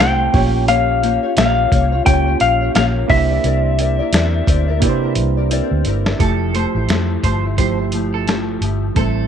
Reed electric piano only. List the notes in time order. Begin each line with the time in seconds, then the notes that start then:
Already playing: A3 C4 E4 G4 C5
0.33 A#3 C#4 F4 G4 C#5
2.05 A#3 C#4 F4 G4 C#5
3.08 A#3 D4 E4 G4 C5
4.80 A#3 D4 E4 G4 B4
4.89 C5
6.18 F3 A3 E4 G4
7.57 F3 A3 E4 G4
8.95 G3 C4 E4 A4